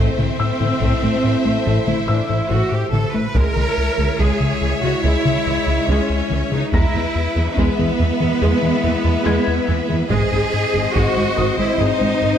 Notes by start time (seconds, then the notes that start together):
Already playing: A3 C4 E4 C5 E5
0.18 A1 A2 A3, taiko mid
0.40 A2 E6
0.60 A1 A2 A3, taiko mid
0.81 A1 A2 A3, taiko
1.03 A1 A3
1.24 A1 A2 E3
1.44 A1 A3
1.65 A1 A2 A3
1.87 A1 A3 E4, taiko mid
2.08 A1 A2 E3 D4 E5 E6
2.30 A1 A2 A3 E4
2.50 A1 A2 A3 F#4
2.72 A2 G4
2.92 A1 A2 E3 A4, taiko mid
3.14 A1 A3 B4
3.34 C#2 G#3 E4 A#4 C#5 E5, taiko
3.56 C#2 G#3, taiko mid
3.78 C#2
3.98 C#2 G#3, taiko mid
4.19 C#2 G#3 G#4, taiko
4.40 C#2 C#3 G#3
4.61 C#2 E3
4.82 C#2 C#3 G#3 F#4
5.03 C#2 G#3 E4
5.25 C#2 C#3 G#3, taiko mid
5.46 C#2 E3
5.67 C#2 G#3
5.88 C#2 G#3 C#4
6.10 C#2
6.30 C#2 E3, taiko mid
6.52 C#2 C#3 G#3 D#4
6.72 E2 G#3 E4 B4 E5 A#5 A#6, taiko
6.94 E2 G#3
7.16 E2
7.36 E2 G#3
7.57 E2 G#3 B3, taiko
7.77 E2 E3 G#3
7.99 E2 E3
8.20 E2 E3 G#3
8.41 E2 G#3
8.62 E2 E3 G#3
8.83 E2 E3
9.04 E2 G#3
9.25 E2 G#3 E4 G#6
9.47 E2
9.68 E2 E3
9.89 E2 E3 G#3
10.09 G#1 G#2 G#3 C4 G#4 C5 D#5, taiko
10.31 G#1 G#2 G#3
10.54 G#2
10.73 G#1 G#2 G#3
10.94 G#1 G#2 G#3 F#4, taiko
11.15 G#1 G#3
11.36 G#1 G#2 D#3 D#6
11.57 G#1 G#3 E4
11.78 G#1 G#2 G#3 D#4
12.00 G#1 G#3
12.21 G#1 G#2 D#3